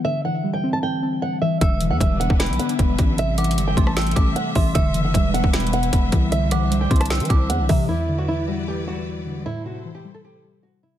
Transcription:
0.05 D3 E5
0.24 E3 F#5
0.44 G3
0.53 G5
0.63 C4
0.73 A5
0.83 G5
1.02 C4
1.22 F#5
1.42 E3 E5
1.61 E1 D3 G3 D4 B4 E5 E6, kick, closed hi-hat
1.81 E3, closed hi-hat
1.90 E2 F#5
2.00 E1 G3 E5, kick, closed hi-hat
2.20 B3 F#5, closed hi-hat
2.30 E1, kick
2.39 G5 B5, snare, closed hi-hat
2.46 B1, closed hi-hat
2.53 closed hi-hat
2.59 B3 F#5, closed hi-hat
2.69 closed hi-hat
2.79 E1, kick, closed hi-hat
2.99 A1 E3, kick, closed hi-hat
3.18 C3 C4 A4 E5, closed hi-hat
3.38 E3 F#5 D6, closed hi-hat
3.44 closed hi-hat
3.51 closed hi-hat
3.57 G1 G3, closed hi-hat
3.67 G5
3.77 A1 A3 C6, kick, closed hi-hat
3.87 A5, cross-stick
3.97 G5 E6, snare, closed hi-hat
4.02 closed hi-hat
4.07 closed hi-hat
4.11 closed hi-hat
4.16 A1 A3 D6, kick, closed hi-hat
4.36 F#5, closed hi-hat
4.55 A1 E3 E5 C6, kick, open hi-hat
4.75 E1 D3 G3 D4 B4 E5 E6, kick, closed hi-hat
4.94 F#1 E3, closed hi-hat
5.05 F#5
5.14 E1 G3 E5, kick, closed hi-hat
5.34 B3 F#5, closed hi-hat
5.44 E1, kick
5.53 G5 B5, snare, closed hi-hat
5.60 closed hi-hat
5.67 closed hi-hat
5.73 B3 F#5, closed hi-hat
5.83 closed hi-hat
5.93 E1, kick, closed hi-hat
6.12 C2 E3, kick, closed hi-hat
6.32 D3 D4 C5 E5, closed hi-hat
6.51 E3 F#5 D6, cross-stick, closed hi-hat
6.71 G3, closed hi-hat
6.81 G5
6.91 C2 C4 C6, kick, closed hi-hat
6.96 closed hi-hat
7.00 A5, cross-stick, closed hi-hat
7.06 closed hi-hat
7.10 G5 E6, snare
7.15 closed hi-hat
7.20 E3, closed hi-hat
7.25 closed hi-hat
7.30 C2 C4 D6, kick, closed hi-hat
7.50 E2 F#5, closed hi-hat
7.59 C2
7.69 C3 E3 E5, kick, open hi-hat
7.89 E2 G3 E4 B4 D5
8.09 D3
8.18 F#4
8.28 E3 E4
8.48 G3 F#4
8.68 G4
8.87 G3 F#4
9.26 D3
9.46 A2 E4 A4 C5
9.65 C3 F#4
9.85 E3
9.95 G4
10.05 G3
10.14 A4
10.25 G4
10.44 G3
10.63 F#4
10.83 C3 E4

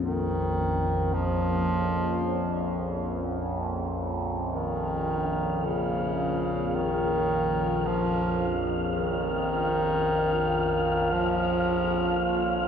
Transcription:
Already playing: A#1 F2 A#3 C#4 F4 C#5
0.04 D#3
1.14 F3
4.52 D#3 F4 F5
5.65 C#3
6.75 D#3
7.87 F3
8.96 D#3
11.12 F3

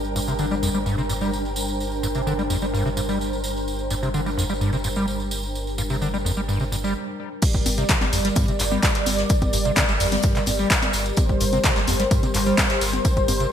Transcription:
Already playing: G1 G3 D4 G4 A#4 C5 G5 A#5
0.04 tambourine
0.16 G2, tambourine
0.28 C3, tambourine
0.39 D3, tambourine
0.51 G3, tambourine
0.63 F2, tambourine
0.74 G3, tambourine
0.86 G2, tambourine
0.98 C3, tambourine
1.09 G2, tambourine
1.21 G3, tambourine
1.33 tambourine
1.45 tambourine
1.56 tambourine
1.68 tambourine
1.80 tambourine
1.92 tambourine
2.03 G2, tambourine
2.15 C3, tambourine
2.27 D3, tambourine
2.39 G3, tambourine
2.50 F2, tambourine
2.62 G3, tambourine
2.74 G2, tambourine
2.85 C3, tambourine
2.97 G2, tambourine
3.09 G3, tambourine
3.21 tambourine
3.33 tambourine
3.44 tambourine
3.56 tambourine
3.68 tambourine
3.79 tambourine
3.90 G2, tambourine
4.03 C3, tambourine
4.14 D3, tambourine
4.26 G3, tambourine
4.38 F2, tambourine
4.49 G3, tambourine
4.61 G2, tambourine
4.73 C3, tambourine
4.84 G2, tambourine
4.96 G3, tambourine
5.08 tambourine
5.20 tambourine
5.31 tambourine
5.43 tambourine
5.55 tambourine
5.67 tambourine
5.78 G2, tambourine
5.90 C3, tambourine
6.02 D3, tambourine
6.14 G3, tambourine
6.25 F2, tambourine
6.37 G3, tambourine
6.48 G2, tambourine
6.60 C3, tambourine
6.72 G2, tambourine
6.84 G3, tambourine
7.42 G3 G4 A#4 D5, kick, closed hi-hat, tambourine, crash
7.54 G1, kick, tambourine
7.66 G1 G2, open hi-hat, tambourine, high conga
7.78 C3, closed hi-hat, tambourine
7.89 D3, kick, snare, clap, closed hi-hat, tambourine
8.01 G1 G3, snare, closed hi-hat, tambourine, high conga
8.13 G1 F2, open hi-hat, tambourine
8.25 G3, snare, closed hi-hat, tambourine
8.36 G2, kick, closed hi-hat, tambourine, high conga
8.48 C3, closed hi-hat, tambourine
8.59 G1 G2, clap, open hi-hat, tambourine
8.71 G3, tambourine, high conga
8.83 kick, snare, clap, closed hi-hat, tambourine
8.95 snare, closed hi-hat, tambourine
9.06 G1, open hi-hat, tambourine, high conga
9.18 snare, closed hi-hat, tambourine
9.29 kick, closed hi-hat, tambourine
9.42 G1, kick, closed hi-hat, tambourine, high conga
9.53 G1 G2, open hi-hat, tambourine
9.65 C3, closed hi-hat, tambourine
9.76 D3, kick, snare, clap, closed hi-hat, tambourine, high conga
9.88 G1 G3, closed hi-hat, tambourine
10.00 G1 F2, open hi-hat, tambourine
10.11 G3, snare, closed hi-hat, tambourine, high conga
10.23 G2, kick, closed hi-hat, tambourine
10.36 C3, clap, closed hi-hat, tambourine
10.46 G1 G2, open hi-hat, tambourine, high conga
10.59 G3, tambourine
10.70 kick, snare, clap, closed hi-hat, tambourine
10.82 closed hi-hat, tambourine, high conga
10.93 G1, open hi-hat, tambourine
11.06 closed hi-hat, tambourine
11.17 C5, kick, closed hi-hat, tambourine, high conga
11.29 G1, kick, tambourine
11.40 G1 G2, open hi-hat, tambourine
11.53 C3, closed hi-hat, tambourine, high conga
11.64 D3, kick, snare, clap, closed hi-hat, tambourine
11.76 G1 G3, snare, closed hi-hat, tambourine
11.87 G1 F2, open hi-hat, tambourine, high conga
12.00 G3, snare, closed hi-hat, tambourine
12.11 G2, kick, closed hi-hat, tambourine
12.23 C3, closed hi-hat, tambourine, high conga
12.34 G1 G2, clap, open hi-hat, tambourine
12.46 G3, tambourine
12.58 kick, snare, clap, closed hi-hat, tambourine, high conga
12.70 snare, closed hi-hat, tambourine
12.81 G1, open hi-hat, tambourine
12.93 snare, tambourine, high conga
13.05 kick, closed hi-hat, tambourine
13.17 G1, kick, closed hi-hat, tambourine
13.28 G1 G2, open hi-hat, tambourine, high conga
13.40 C3, closed hi-hat, tambourine

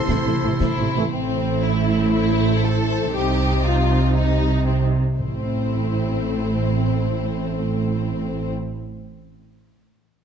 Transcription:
Already playing: C3 E4 A4 C5 C6
0.08 A1 A3 E4, concert bass drum, snare
0.25 A1 A3 E4
0.43 A1 E3 A3 E4
0.60 A1 A3 E4, concert bass drum, snare
0.78 A1 A3 E4
0.95 A1 E3 A3 E4
1.12 A1 A2 A3 C4 E4 C5
1.63 E4
2.13 E4
2.64 A4
3.14 C2 C3 G3 D#4 G4
3.65 F4
4.17 D#4
4.67 C4
5.19 A1 A2 A3 C4 E4 C5

